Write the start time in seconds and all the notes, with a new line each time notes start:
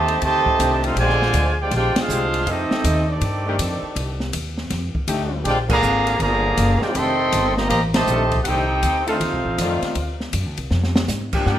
Already playing: D#2 C3 D#3 A3 G4 C5 D#5 A5
0.08 ride
0.22 D2 C3 D#3 A3 G4 C5 D#5 A5, kick, ride
0.45 muted upright bass stroke, kick
0.58 C2 D#3 A3 D4 G4, kick, hi-hat pedal, ride
0.84 A3 C4 D#4 F4 A4 C5 F5, ride
0.96 A#1 D3 F3 G#3 C4 F4 G4 C5 D5 G#5, kick, ride
1.09 snare
1.22 snare
1.33 D2, kick, hi-hat pedal, ride
1.61 G#3 D4 F4 G4 C5 D5 G5
1.71 A#1 G#3 D4 G4 D5, kick, snare, ride
1.75 F4 C5 G5
1.96 G#3 D4 F4, muted upright bass stroke, snare, ride
2.00 D4 G#4 C5 F5
2.09 C2 D3 G#3 C4 G4, hi-hat pedal
2.34 ride
2.46 F2 A3 C4 D#4 G4 A4 D#5, kick, ride
2.71 muted upright bass stroke, snare
2.84 D#2, kick, hi-hat pedal, ride
3.09 D#3 A3 C4 D4 G4 A4 D5
3.21 G2, kick, ride
3.46 D#3 A3 D4 G4
3.59 F2, kick, hi-hat pedal, ride
3.82 muted upright bass stroke
3.96 C2, kick, ride
4.20 snare
4.33 D#2, kick, hi-hat pedal, ride
4.58 snare
4.70 F2, kick, snare, ride
4.94 muted upright bass stroke, kick
5.07 D2 A3 D4 D#4 G4, kick, hi-hat pedal, ride
5.44 A#1 D3 G#3 C4 D4 F4 G4 C5 D5 G5, kick, ride
5.68 D3 F3 A#3 G#4 D5 F5 A#5, kick, crash
5.83 G#1, hi-hat pedal
6.07 ride
6.20 G1 D3 F3 A#3 G#4 D5 F5 A#5, kick, ride
6.57 F#1, kick, hi-hat pedal, ride
6.81 G#3 D4 F4 G4 C5 D5 G5, muted upright bass stroke, snare
6.93 F1 D#3 A3 C4 A4 D#5 G5 C6, kick, ride
6.97 D#3 A3 D4 G4
7.32 G1, kick, hi-hat pedal, ride
7.56 A#3 G4 C5 D#5 A#5, snare
7.68 A1 A#3 G4 C5 D#5 A#5, kick, ride
7.93 C3 D#3 A3 G4 C5 D#5 A5, snare, ride
8.07 A#1 D#3 A3 D4 A4, hi-hat pedal
8.32 kick, ride
8.42 C2 C4 D#4 G4 A4 C5 F#5 G5, kick, ride
8.47 D#3 A3 D4 G4
8.83 D2, kick, hi-hat pedal, ride
9.05 D#3 A3 C4 D4 D#4 F4 A4 C5 F5, ride
9.20 D#2, kick, ride
9.32 C2
9.45 A1
9.58 F2 D#3 A3 F4 D5, kick, hi-hat pedal, ride
9.82 muted upright bass stroke, snare, ride
9.95 D2, kick, ride
10.20 snare
10.33 F#2, kick, hi-hat pedal, ride
10.46 D2
10.57 C2, ride
10.71 F2, snare
10.84 snare
10.96 snare
11.08 G#2, snare, hi-hat pedal
11.33 F3 A#3 D4 G4, kick, crash
11.46 G2 A#3 D4 G4 F#5, snare
11.51 F4 A#4 D5 G5